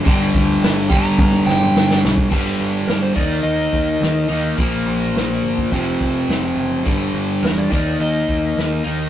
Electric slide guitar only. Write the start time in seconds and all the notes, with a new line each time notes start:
0.90 G5
1.04 A#5
1.46 G5
2.88 A#4
3.02 C5
3.16 D5
3.43 D#5
7.45 A#4
7.58 D5
7.74 D5
8.01 D#5